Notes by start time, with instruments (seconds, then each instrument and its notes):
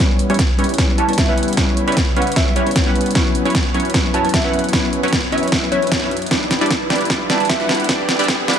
0.00 ambient pad C#3 G3 B3 E4, tine electric piano G3 B3 C#4 E4 B4, supersaw synth G3 C#4 E4 B4 C#5, riser
0.19 closed hi-hat
0.29 tine electric piano G3 B3 C#4 E4 B4, supersaw synth G3 C#4 E4 B4 C#5, closed hi-hat
0.34 closed hi-hat
0.39 kick, snare, closed hi-hat
0.58 tine electric piano G3 B3 C#4 E4 B4, supersaw synth G3 C#4 E4 B4 C#5, closed hi-hat
0.64 closed hi-hat
0.69 closed hi-hat
0.74 closed hi-hat
0.78 supersaw synth G3 C#4 E4 B4 C#5, kick, snare, closed hi-hat
0.88 tine electric piano G3 B3 C#4 E4 B4
0.98 supersaw synth G3 C#4 E4 B4 C#5, synth pluck A5, closed hi-hat
1.08 tine electric piano G3 B3 C#4 E4 B4, synth pluck A5, closed hi-hat
1.13 closed hi-hat
1.18 synth pluck E5, kick, snare, closed hi-hat
1.28 tine electric piano G3 B3 C#4 E4 B4, supersaw synth G3 C#4 E4 B4 F#5, synth pluck E5
1.38 closed hi-hat
1.43 closed hi-hat
1.48 closed hi-hat
1.53 tine electric piano G3, closed hi-hat
1.57 supersaw synth G3 C#4 E4 B4 C#5, tine electric piano B3 C#4 E4 B4, kick, snare, closed hi-hat
1.77 closed hi-hat
1.87 tine electric piano G3 B3 C#4 E4 B4, supersaw synth G3 C#4 E4 B4 C#5, closed hi-hat
1.92 closed hi-hat
1.97 kick, snare, closed hi-hat
2.16 tine electric piano G3 B3 C#4 E4 B4, supersaw synth G3 C#4 E4 B4 C#5, synth pluck F#5, closed hi-hat
2.22 closed hi-hat
2.27 closed hi-hat
2.32 closed hi-hat
2.36 supersaw synth G3 C#4 E4 B4 C#5, synth pluck E5, kick, snare, closed hi-hat
2.46 tine electric piano G3 B3 C#4 E4 B4, synth pluck E5
2.56 supersaw synth G3 C#4 E4 B4 C#5, synth pluck C#5, closed hi-hat
2.66 tine electric piano G3 B3 C#4 E4 B4, closed hi-hat
2.71 closed hi-hat
2.76 kick, snare, closed hi-hat
2.85 tine electric piano G3 B3 C#4 E4 B4, supersaw synth G3 C#4 E4 B4 F#5
2.96 closed hi-hat
3.01 closed hi-hat
3.06 closed hi-hat
3.11 tine electric piano F#3, closed hi-hat
3.15 ambient pad F#2 E3, supersaw synth F#3 C#4 E4 B4 C#5, tine electric piano B3 C#4 E4 B4, kick, snare, closed hi-hat
3.35 closed hi-hat
3.44 tine electric piano F#3 B3 C#4 E4 B4, supersaw synth F#3 C#4 E4 B4 C#5, closed hi-hat
3.50 closed hi-hat
3.55 kick, snare, closed hi-hat
3.73 tine electric piano F#3 B3 C#4 E4 B4, supersaw synth F#3 C#4 E4 B4 C#5, closed hi-hat
3.80 closed hi-hat
3.85 closed hi-hat
3.90 closed hi-hat
3.94 supersaw synth F#3 C#4 E4 B4 C#5, kick, snare, closed hi-hat
4.04 tine electric piano F#3 B3 C#4 E4 B4
4.14 supersaw synth F#3 C#4 E4 B4 C#5, synth pluck A5, closed hi-hat
4.23 tine electric piano F#3 B3 C#4 E4 B4, synth pluck A5, closed hi-hat
4.29 closed hi-hat
4.34 synth pluck E5, kick, snare, closed hi-hat
4.43 tine electric piano F#3 B3 C#4 E4 B4, supersaw synth F#3 C#4 E4 B4 F#5, synth pluck E5
4.54 closed hi-hat
4.59 closed hi-hat
4.64 closed hi-hat
4.69 tine electric piano F#3, closed hi-hat
4.73 supersaw synth F#3 C#4 E4 B4 C#5, tine electric piano B3 C#4 E4 B4, kick, snare, closed hi-hat
4.93 closed hi-hat
5.03 tine electric piano F#3 B3 C#4 E4 B4, supersaw synth F#3 C#4 E4 B4 C#5, closed hi-hat
5.08 closed hi-hat
5.13 kick, snare, closed hi-hat
5.31 tine electric piano F#3 B3 C#4 E4 B4, supersaw synth F#3 C#4 E4 B4 C#5, synth pluck E5, closed hi-hat
5.38 closed hi-hat
5.43 closed hi-hat
5.48 closed hi-hat
5.52 supersaw synth C#4 E4 B4 C#5, kick, snare, closed hi-hat
5.62 tine electric piano F#3 B3 C#4 E4 B4
5.71 tine electric piano F#3 B3 C#4 E4 B4, supersaw synth F#3 C#4 E4 B4 E5, synth pluck C#5, closed hi-hat
5.82 closed hi-hat
5.87 closed hi-hat
5.92 kick, snare, closed hi-hat
6.01 tine electric piano F#3 B3 C#4 E4 B4, supersaw synth F#3 C#4 E4 B4 E5
6.11 closed hi-hat
6.17 closed hi-hat
6.22 closed hi-hat
6.26 closed hi-hat
6.31 ambient pad E2 D3 G4, supersaw synth G3 D4 E4 B4 D5, harp G4, kick, snare, closed hi-hat
6.42 harp B3
6.51 harp B3, snare, closed hi-hat
6.61 supersaw synth G3 D4 E4 B4 D5, closed hi-hat
6.66 closed hi-hat
6.71 harp D4, kick, snare, closed hi-hat
6.81 harp E4
6.90 supersaw synth G3 D4 E4 B4 D5, harp G4, snare, closed hi-hat
6.96 closed hi-hat
7.01 harp B3, closed hi-hat
7.05 closed hi-hat
7.10 supersaw synth G3 D4 E4 B4 D5, harp B3, kick, snare, closed hi-hat
7.30 supersaw synth G3 D4 E4 B4 D5, harp D4, synth pluck A5, snare, closed hi-hat
7.40 harp E4, synth pluck A5, closed hi-hat
7.45 closed hi-hat
7.49 synth pluck E5, kick, snare, closed hi-hat
7.60 supersaw synth G3 D4 E4 B4 F#5, harp B3, synth pluck E5
7.69 harp B3, snare, open hi-hat
7.75 closed hi-hat
7.80 closed hi-hat
7.84 closed hi-hat
7.89 supersaw synth G3 D4 E4 B4 D5, kick, snare, closed hi-hat
8.00 harp E4
8.09 harp G4, snare, closed hi-hat
8.19 supersaw synth G3 D4 E4 B4 D5, harp B3, closed hi-hat
8.24 closed hi-hat
8.28 harp B3, kick, snare, closed hi-hat
8.48 supersaw synth G3 D4 E4 B4 D5, harp D4, synth pluck F#5, snare, closed hi-hat
8.53 closed hi-hat